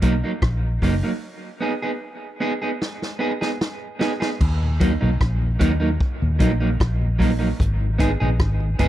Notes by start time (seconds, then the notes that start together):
0.02 B1 F#3 A#3 D#4, kick, closed hi-hat
0.24 F#3 A#3 D#4
0.42 A#1, kick, cross-stick
0.82 F#1 F#3 A#3 D#4, kick, cross-stick, open hi-hat
1.03 F#3 A#3 D#4
1.61 B3 D#4 G#4
1.82 B3 D#4 G#4
2.40 B3 D#4 G#4
2.62 B3 D#4 G#4
2.82 snare
3.02 snare
3.19 B3 D#4 G#4
3.41 B3 D#4 G#4, snare
3.61 snare
3.99 B3 D#4 G#4, snare
4.20 B3 D#4 G#4, snare
4.41 D#2, kick, crash
4.62 D#2 A#2
4.80 F#3 A#3 D#4, kick, closed hi-hat
5.01 B1 D#2 A#2 F#3 A#3 D#4
5.21 A#1, kick, cross-stick
5.42 D#2 A#2
5.59 D#2 F#3 A#3 D#4, kick, closed hi-hat
5.80 F#3 A#3 D#4
6.00 kick
6.22 D#2 A#2
6.39 A#1 F#3 A#3 D#4, kick, closed hi-hat
6.60 F#3 A#3 D#4
6.80 A#1, kick, cross-stick
7.01 D#2 A#2
7.19 F#3 A#3 D#4, kick, open hi-hat
7.39 F#3 A#3 D#4
7.60 G#1, kick, hi-hat pedal
7.80 G#2 D#3
7.98 G#3 B3 D#4 G#4, kick, closed hi-hat
8.20 A#1 G#2 D#3 B3 D#4 G#4
8.40 G#1, kick, cross-stick
8.60 G#2 D#3
8.79 F#1 G#3 B3 D#4 G#4, kick, closed hi-hat